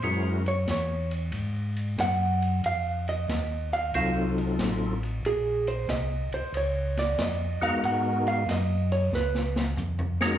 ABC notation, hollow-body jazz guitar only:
X:1
M:4/4
L:1/8
Q:"Swing" 1/4=92
K:Bbm
V:1 name="Hollow-body jazz guitar"
c d d z3 g2 | f e2 f f z3 | A c e c d =d e f | g f e d _c z3 |]